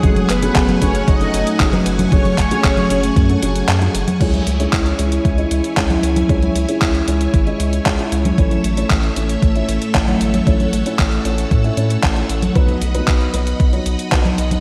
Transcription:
Already playing: G#3 G#4 F#5
0.03 F#1 F#3 A3 C#4 G#4 G#5 C#6, kick, closed hi-hat
0.16 closed hi-hat, high conga
0.29 F#1 B3 B4, clap, closed hi-hat
0.43 F#3 A3 C#4 G#4, closed hi-hat
0.55 F#1, kick, clap, closed hi-hat
0.69 closed hi-hat, high conga
0.82 F#1 F#3 A3 C#4 G#4 C#5, kick, closed hi-hat
0.95 closed hi-hat
1.08 F#1 D#4 D#5, kick, closed hi-hat
1.21 F#3 A3 C#4 A4, closed hi-hat
1.34 F#1, closed hi-hat
1.47 closed hi-hat
1.60 F#1 F#3 A3 C#4 G#4, kick, clap, closed hi-hat
1.73 F#3 A3 C#4 B4, closed hi-hat, high conga
1.86 F#1, closed hi-hat
1.99 closed hi-hat, high conga
2.12 F#1 F#3 A3 C#4 G#4 C#5, kick, closed hi-hat
2.25 closed hi-hat, high conga
2.38 F#1, kick, clap, closed hi-hat
2.51 F#3 A3 C#4 G#4, closed hi-hat
2.64 F#1, kick, clap, closed hi-hat
2.77 closed hi-hat, high conga
2.90 F#1 F#3 A3 C#4 G#4, closed hi-hat
3.03 closed hi-hat
3.16 F#2, kick, closed hi-hat
3.29 F#3 A3 C#4 A4, closed hi-hat
3.42 F#1 F#3 A3 C#4 G#4, closed hi-hat
3.56 closed hi-hat
3.68 F#2, clap, closed hi-hat
3.82 F#3 A3 C#4 G#4, closed hi-hat
3.95 F#1, closed hi-hat
4.08 closed hi-hat, high conga
4.21 C#2 G#3 C#4 E4 C#5 G#5, kick, closed hi-hat, crash
4.34 closed hi-hat, high conga
4.47 C#2, closed hi-hat
4.60 G#3 C#4 E4 C#5, closed hi-hat
4.73 C#2, kick, clap, closed hi-hat
4.86 closed hi-hat
4.99 C#2 G#3 C#4 E4 C#5, closed hi-hat
5.12 closed hi-hat
5.25 C#2, kick, closed hi-hat
5.38 G#3 C#4 E4 D#5, closed hi-hat
5.51 C#2, closed hi-hat
5.64 closed hi-hat
5.77 C#2 G#3 C#4 E4 C#5, kick, clap, closed hi-hat
5.90 G#3 C#4 E4 E5, closed hi-hat, high conga
6.03 C#2, closed hi-hat
6.16 closed hi-hat, high conga
6.29 C#2 G#3 C#4 E4 C#5, kick, closed hi-hat
6.42 closed hi-hat, high conga
6.55 C#2, closed hi-hat
6.68 G#3 C#4 E4 C#5, closed hi-hat
6.81 C#2, kick, clap, closed hi-hat
6.95 closed hi-hat
7.08 C#2 G#3 C#4 E4 C#5, closed hi-hat
7.21 closed hi-hat
7.34 G#1, kick, closed hi-hat
7.47 G#3 C#4 E4 D#5, closed hi-hat
7.60 C#2, closed hi-hat
7.73 closed hi-hat
7.86 C#2 G#3 C#4 E4 C#5, kick, clap, closed hi-hat
7.99 G#3 C#4 E4 E5, closed hi-hat
8.12 C#2, closed hi-hat
8.25 closed hi-hat, high conga
8.38 A1 A3 C#4 E4 A4 C#5 E5 E6, kick, closed hi-hat
8.51 closed hi-hat, high conga
8.64 A1, closed hi-hat
8.77 A3 C#4 E4 C#5, closed hi-hat
8.90 A1, kick, clap, closed hi-hat
9.03 closed hi-hat
9.16 A1 A3 C#4 E4 C#5, closed hi-hat
9.29 closed hi-hat
9.42 A1, kick, closed hi-hat
9.56 A3 C#4 E4 E5, closed hi-hat
9.69 A1, closed hi-hat
9.82 closed hi-hat
9.95 A1 A3 C#4 E4 C#5, kick, clap, closed hi-hat
10.08 A3 C#4 E4 F#5, closed hi-hat, high conga
10.21 A1, closed hi-hat
10.34 closed hi-hat, high conga
10.47 A1 A3 C#4 E4 C#5 F#5, kick, closed hi-hat
10.60 closed hi-hat, high conga
10.73 A1, closed hi-hat
10.86 A3 C#4 E4 C#5, closed hi-hat
10.99 A1, kick, clap, closed hi-hat
11.12 closed hi-hat
11.25 A1 A3 C#4 E4 C#5, closed hi-hat
11.38 closed hi-hat
11.51 A2, kick, closed hi-hat
11.64 A3 C#4 E4 E5, closed hi-hat
11.77 A2 A3 C#4 E4 C#5, closed hi-hat
11.90 closed hi-hat
12.03 A1, kick, clap, closed hi-hat
12.16 A3 C#4 E4 C#5, closed hi-hat
12.29 A1, closed hi-hat
12.42 closed hi-hat, high conga
12.55 B1 F#3 B3 D#4 B4 D#5 B5, kick, closed hi-hat
12.69 closed hi-hat, high conga
12.82 B1, closed hi-hat
12.95 F#3 B3 D#4 B4, closed hi-hat
13.08 B1, kick, clap, closed hi-hat
13.21 closed hi-hat
13.34 B1 F#3 B3 D#4 B4, closed hi-hat
13.47 closed hi-hat
13.60 B1, kick, closed hi-hat
13.73 F#3 B3 D#4 C#5, closed hi-hat
13.86 B1, closed hi-hat
13.99 closed hi-hat
14.12 B1 F#3 B3 D#4 B4, kick, clap, closed hi-hat
14.25 F#3 B3 D#4 D#5, closed hi-hat, high conga
14.38 B1, closed hi-hat
14.51 closed hi-hat, high conga

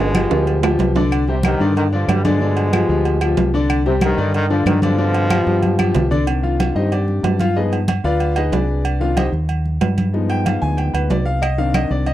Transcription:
Already playing: G1 B2 F3 G#3
0.15 F3 F4 G4, high conga, low agogo, claves
0.31 D2 F3 F4 G4, high conga, high timbale
0.47 high conga, low agogo
0.63 F3 F4 G4, high conga, low timbale, low agogo, claves
0.79 C2, high conga, low timbale, low agogo
0.95 D3 D4 D5, high conga, low timbale
1.11 high conga, low agogo, claves
1.28 C3 G3 G4 C5, high conga
1.43 G2 D#3 G3 G4 C5, high conga, low timbale, low agogo, claves
1.60 G2 D3 D4 D5, high conga
1.76 G2 D#3, high conga, low agogo
1.92 D3 F3 D4 D5, high conga
2.08 G2 G3, high conga, low timbale, low agogo, claves
2.25 B2 D3 F3 G#3 D4 D5, high conga, low agogo
2.41 D3 D4 D5, high conga
2.57 high conga, low agogo
2.73 F3 F4 G4, high conga, low timbale, low agogo, claves
2.89 D2 F3 F4 G4, high conga
3.05 high conga, low agogo
3.21 F3 F4 G4, high conga, low agogo, claves
3.37 C2, high conga, low timbale, low agogo
3.54 D3 D4 D5
3.70 high conga, low agogo, claves
3.86 C3 G3 G4 C5, high conga
4.01 G2 D#3 G3 G4 C5, high conga, low timbale, low agogo, claves
4.17 G2 D3 D4 D5, high conga
4.34 G2 D#3, high conga, low agogo
4.50 D3 F3 D4 D5, high conga
4.66 G2 D#3, high conga, low timbale, low agogo, claves
4.82 B2 C3 D3 F3 D4 D5, high conga, low agogo
4.98 D3 D4 D5, high conga
5.14 high conga, low agogo
5.30 F3 F4 G4, high conga, low timbale, low agogo, claves
5.46 G2 F3 F4 G4, high conga
5.62 high conga, low agogo
5.79 F3 F4 G4, high conga, low agogo, claves
5.95 C2, low conga, low timbale, low agogo
6.11 D3 D4 D5, low conga
6.27 D#3 C4 D4, high conga, low agogo
6.43 F4 F5, high conga
6.60 high conga, low timbale, low agogo
6.75 G2 D#4 G4 C5 D#5, high conga
6.92 D4 G4 D5, high conga, low agogo
7.08 high conga
7.23 G2, high conga, low timbale, low agogo
7.39 F4 F5, high conga, low agogo
7.56 F3 G#3 B3 D#4 G#4 B4 D#5, high conga
7.72 high conga, low agogo
7.88 high conga, low timbale, low agogo
8.04 D2 F4 B4 D5 F5, high conga
8.20 high conga, low agogo
8.36 D#4 G#4 B4 D#5, high conga, low agogo
8.52 C2 D4 G#4 B4 D5, high conga, low timbale, low agogo
8.85 high conga, low agogo
9.00 D#3 C4 D4 F4 F5, high conga
9.17 D#4 G4 C5 D#5, high conga, low timbale, low agogo
9.32 D#2, high conga
9.49 high conga, low agogo
9.65 high conga
9.81 G2, high conga, low timbale, low agogo
9.98 high conga, low agogo
10.13 F3 G#3 B3 D#4, high conga
10.30 G5, high conga, low agogo
10.46 F5, high conga, low timbale, low agogo
10.62 D2 G#5, high conga
10.77 G5, high conga, low agogo
10.94 D2 B4, high conga, low agogo
11.10 C2 D5, high conga, low timbale, low agogo
11.26 F5
11.42 D#5, high conga, low agogo, claves
11.58 D#3 C4 D4 F5, high conga
11.74 D#5, high conga, low timbale, low agogo, claves
11.90 C2 D5, high conga
12.06 D#5, high conga, low agogo

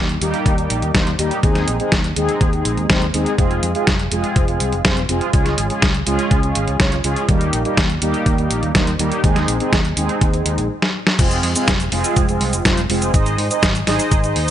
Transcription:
Already playing: D#2
0.09 closed hi-hat
0.21 D#2 G3 A#3 D#4 G4, closed hi-hat
0.34 closed hi-hat
0.46 D#2, kick, closed hi-hat
0.58 G3 A#3 D#4 G4, closed hi-hat
0.70 A#1, closed hi-hat
0.82 D#2, closed hi-hat
0.95 D#2 G3 A#3 D#4 C5, kick, snare, closed hi-hat
1.07 closed hi-hat
1.19 D#2 G3 A#3 D#4 G4, closed hi-hat
1.31 closed hi-hat
1.43 D#2 G#3 C4 D#4 G#4, kick, closed hi-hat
1.55 snare, closed hi-hat
1.68 A#1, closed hi-hat
1.80 G#3 C4 D#4 G#4, closed hi-hat
1.92 D#2, kick, snare, closed hi-hat
2.04 closed hi-hat
2.16 D#2 G#3 C4 D#4 G#4, closed hi-hat
2.29 closed hi-hat
2.41 D#2, kick, closed hi-hat
2.53 G#3 C4 D#4 G#4, closed hi-hat
2.65 A#1, closed hi-hat
2.77 D#2, closed hi-hat
2.90 D#2 G#3 C4 D#4 C5, kick, snare, closed hi-hat
3.02 closed hi-hat
3.14 D#2 G#3 C4 D#4 G#4, closed hi-hat
3.26 closed hi-hat
3.38 F1 G#3 C4 F4 G#4, kick, closed hi-hat
3.51 closed hi-hat
3.63 F2, closed hi-hat
3.75 G#3 C4 F4 G#4, closed hi-hat
3.87 F1, kick, snare, closed hi-hat
3.99 closed hi-hat
4.12 F1 G#3 C4 F4 G#4, closed hi-hat
4.24 closed hi-hat
4.36 F1, kick, closed hi-hat
4.48 G#3 C4 F4 G#4, closed hi-hat
4.60 C2, closed hi-hat
4.72 F1, closed hi-hat
4.85 G#3 C4 F4 C5, kick, snare, closed hi-hat
4.97 closed hi-hat
5.09 F1 G#3 C4 F4 G#4, closed hi-hat
5.21 closed hi-hat
5.33 C#2 G#3 C#4 F4 G#4, kick, closed hi-hat
5.46 snare, closed hi-hat
5.58 G#1, closed hi-hat
5.70 G#3 C#4 F4 G#4, closed hi-hat
5.82 C#2, kick, snare, closed hi-hat
5.94 closed hi-hat
6.07 C#2 G#3 C#4 F4 G#4, closed hi-hat
6.19 closed hi-hat
6.31 C#2, kick, closed hi-hat
6.43 G#3 C#4 F4 G#4, closed hi-hat
6.55 G#1, closed hi-hat
6.68 C#2, closed hi-hat
6.80 G#3 C#4 F4 C#5, kick, snare, closed hi-hat
6.92 closed hi-hat
7.04 C#2 G#3 C#4 F4 G#4, closed hi-hat
7.16 closed hi-hat
7.29 D#2 G3 A#3 D#4 G4, kick, closed hi-hat
7.41 closed hi-hat
7.53 A#1, closed hi-hat
7.65 G3 A#3 D#4 G4, closed hi-hat
7.77 D#2, kick, snare, closed hi-hat
7.90 closed hi-hat
8.02 D#2 G3 A#3 D#4 G4, closed hi-hat
8.14 closed hi-hat
8.26 D#2, kick, closed hi-hat
8.38 G3 A#3 D#4 G4, closed hi-hat
8.51 A#1, closed hi-hat
8.63 D#2, closed hi-hat
8.75 D#2 G3 A#3 D#4 C5, kick, snare, closed hi-hat
8.87 closed hi-hat
8.99 D#2 G3 A#3 D#4 G4, closed hi-hat
9.12 closed hi-hat
9.24 D#2 G#3 C4 D#4 G#4, kick, closed hi-hat
9.36 snare, closed hi-hat
9.48 A#1, closed hi-hat
9.60 G#3 C4 D#4 G#4, closed hi-hat
9.73 D#2, kick, snare, closed hi-hat
9.85 closed hi-hat
9.97 D#2 G#3 C4 D#4 G#4, closed hi-hat
10.09 closed hi-hat
10.21 D#2, kick, closed hi-hat
10.34 G#3 C4 D#4 G#4, closed hi-hat
10.46 D#2, closed hi-hat
10.58 A#1, closed hi-hat
10.82 snare
11.07 snare
11.19 F1 G#3 C4 F4 G#4, kick, closed hi-hat, crash, cabasa
11.31 closed hi-hat, cabasa
11.43 F2, open hi-hat
11.55 G#3 C4 F4 G#4, closed hi-hat, cabasa
11.68 F1, kick, snare, closed hi-hat, cabasa
11.80 closed hi-hat, cabasa
11.92 F1 G#3 C4 F4 G#4, open hi-hat
12.04 closed hi-hat, cabasa
12.16 F1, kick, closed hi-hat, cabasa
12.29 G#3 C4 F4 G#4, closed hi-hat, cabasa
12.41 C2, open hi-hat
12.53 F1, closed hi-hat, cabasa
12.65 F1 G#3 C4 F4 C5, kick, snare, closed hi-hat, cabasa
12.77 closed hi-hat, cabasa
12.89 F1 G#3 C4 F4 G#4, open hi-hat
13.02 closed hi-hat, cabasa
13.14 G#1 D#4 G#4 C5 D#5, kick, closed hi-hat, cabasa
13.26 closed hi-hat, cabasa
13.38 G#2, open hi-hat
13.51 D#4 G#4 C5 D#5, closed hi-hat, cabasa
13.63 G#1, kick, snare, closed hi-hat, cabasa
13.75 closed hi-hat, cabasa
13.87 G#1 D#4 G#4 C5 D#5, snare, open hi-hat
13.99 closed hi-hat, cabasa
14.11 G#1, kick, closed hi-hat, cabasa
14.24 D#4 G#4 C5 D#5, closed hi-hat, cabasa
14.36 D#2, open hi-hat

